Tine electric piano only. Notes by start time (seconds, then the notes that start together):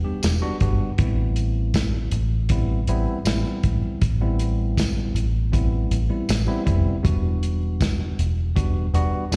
0.04 G3 B3 D4 G4
0.42 G3 B3 D4 F#4
0.61 G3 B3 D4 F#4
0.98 G3 B3 C4 E4
2.51 G3 B3 C4 E4
2.89 G3 B3 C4 E4
3.26 G3 B3 C4 E4
4.21 G3 B3 C4 E4
5.52 G3 B3 C4 E4
6.09 G3 B3 C4 E4
6.47 G3 B3 C4 E4
6.65 G3 B3 C4 E4
7.03 G3 B3 D4 F#4
8.55 G3 B3 D4 F#4
8.94 G3 B3 D4 F#4
9.32 G3 B3 D4 E4